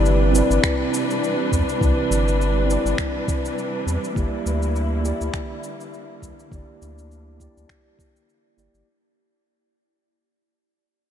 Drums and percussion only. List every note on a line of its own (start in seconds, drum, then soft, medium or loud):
0.06 shaker soft
0.35 shaker medium
0.51 shaker soft
0.64 finger snap medium
0.64 kick loud
0.64 shaker soft
0.94 shaker medium
1.10 shaker soft
1.24 shaker soft
1.52 kick medium
1.52 shaker medium
1.69 shaker soft
1.81 kick loud
1.81 shaker soft
2.12 shaker medium
2.28 shaker soft
2.41 shaker soft
2.70 shaker medium
2.86 shaker soft
2.98 finger snap medium
2.98 kick loud
2.98 shaker soft
3.28 kick loud
3.28 shaker medium
3.45 shaker soft
3.58 shaker soft
3.88 shaker medium
4.04 shaker soft
4.16 kick loud
4.16 shaker soft
4.46 shaker medium
4.63 shaker soft
4.76 shaker soft
5.05 shaker medium
5.21 shaker soft
5.34 finger snap medium
5.34 kick loud
5.34 shaker soft
5.64 shaker medium
5.81 shaker soft
5.94 shaker soft
6.22 kick medium
6.22 shaker medium
6.39 shaker soft
6.52 kick loud
6.52 shaker soft
6.82 shaker medium
6.98 shaker soft
7.11 shaker soft
7.40 kick medium
7.40 shaker medium
7.58 shaker soft
7.69 finger snap medium
7.69 kick loud
7.69 shaker soft
7.99 kick loud
7.99 shaker medium
8.16 shaker soft
8.29 shaker soft
8.59 shaker medium
8.75 shaker soft